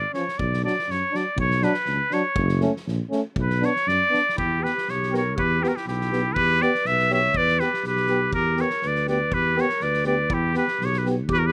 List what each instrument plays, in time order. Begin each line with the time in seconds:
Already playing: cornet D5
0.13 euphonium F3, trombone C#4, cornet C#5, snare
0.28 snare
0.38 tuba B1, cornet D5, kick
0.53 snare
0.63 euphonium F#3, trombone D4, cornet D5, snare
0.79 snare
0.88 tuba F#2, cornet C#5, snare
1.11 euphonium F#3, trombone D4, snare
1.17 cornet D5
1.36 tuba B1, cornet C#5, kick
1.51 snare
1.62 euphonium F#3, trombone D4, cornet B4, snare
1.74 snare
1.85 tuba C#2, snare
2.11 euphonium F#3, trombone D4, cornet C#5, snare
2.36 tuba F#1, kick
2.49 snare
2.60 euphonium A3, trombone C#4, snare
2.76 snare
2.87 tuba A#1, snare
3.10 euphonium A3, trombone C#4, snare
3.36 tuba B1, kick
3.42 cornet B4
3.50 snare
3.61 euphonium B3, trombone D4, snare
3.65 cornet C#5
3.76 snare
3.87 tuba F#2, cornet D5, snare
4.09 euphonium B3, trombone D4
4.14 snare
4.29 snare
4.36 tuba E2, clarinet E4, cornet G4, kick
4.60 euphonium B3, trombone G4, clarinet G4, cornet B4
4.65 snare
4.78 snare
4.86 tuba B1, clarinet G4, snare
4.90 cornet C#5
5.03 snare
5.11 euphonium B3, trombone G4, clarinet A#4, snare
5.17 cornet C#5
5.30 clarinet A#4
5.36 tuba E2, clarinet G4, cornet B4 C#5, kick
5.61 euphonium B3, clarinet E4, trombone G4, cornet G4, snare
5.68 clarinet F#4, cornet A#4
5.76 clarinet E4, cornet G4, snare
5.86 tuba B1, clarinet E4, cornet G4, snare
6.01 snare
6.11 euphonium B3, trombone G4, snare
6.34 tuba E2, clarinet G4, cornet B4, kick
6.61 euphonium B3, trombone G4, clarinet B4, cornet D5, snare
6.75 snare
6.85 tuba B1, clarinet B4, cornet E5, snare
6.99 snare
7.10 euphonium B3, trombone G4, clarinet C#5, cornet E5, snare
7.34 tuba E2, cornet D5, kick
7.38 clarinet B4
7.48 snare
7.58 euphonium B3, trombone G4, cornet B4, snare
7.63 clarinet G4
7.74 snare
7.83 tuba B1, clarinet G4, cornet B4, snare
7.96 snare
8.07 euphonium B3, trombone G4, snare
8.33 tuba E2, clarinet G4, cornet A#4, kick
8.57 euphonium B3, trombone G4, cornet C#5, snare
8.61 clarinet A#4
8.70 snare
8.82 tuba D2, clarinet B4, snare
8.87 cornet D5
8.95 snare
9.07 euphonium B3, trombone G4, clarinet B4, cornet D5, snare
9.31 tuba E2, clarinet G4, cornet B4, kick
9.56 euphonium B3, trombone G4, clarinet A#4, snare
9.61 cornet C#5
9.69 snare
9.80 tuba D2, clarinet B4, cornet D5, snare
9.93 snare
10.03 euphonium B3, trombone G4, clarinet B4, cornet D5, snare
10.30 tuba E2, clarinet E4, cornet G4, kick
10.54 euphonium B3, clarinet G4, trombone G4, cornet B4, snare
10.68 snare
10.79 tuba B1, clarinet G4, snare
10.85 cornet C#5
10.93 clarinet G4, snare
10.98 cornet B4
11.05 euphonium B3, trombone G4, snare
11.27 tuba E2, clarinet G4, kick
11.33 clarinet F#4, cornet B4
11.39 cornet A#4
11.44 clarinet G4, cornet B4